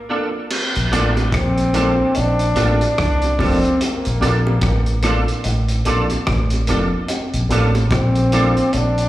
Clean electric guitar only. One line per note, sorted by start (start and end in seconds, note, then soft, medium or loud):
0.09 0.27 D4 medium
0.09 0.27 F4 medium
0.09 0.28 A4 medium
0.92 1.10 D4 loud
0.92 1.10 F4 loud
0.92 1.10 A4 loud
1.74 1.92 D4 medium
1.74 1.92 F4 medium
1.74 1.92 A4 medium
2.56 2.74 D4 medium
2.56 2.74 F4 medium
2.56 2.74 A4 medium
3.39 3.57 D4 medium
3.39 3.57 F4 medium
3.39 3.57 A4 medium
4.21 4.39 D4 medium
4.21 4.39 F4 medium
4.21 4.40 A4 loud
5.04 5.22 D4 medium
5.04 5.22 F4 medium
5.04 5.22 A4 medium
5.86 6.04 D4 medium
5.86 6.04 F4 medium
5.86 6.04 A4 loud
6.69 6.86 D4 medium
6.69 6.87 F4 medium
6.69 6.87 A4 medium
7.51 7.69 D4 medium
7.51 7.69 F4 loud
7.51 7.69 A4 loud
8.33 8.51 D4 medium
8.33 8.51 F4 loud
8.33 8.51 A4 medium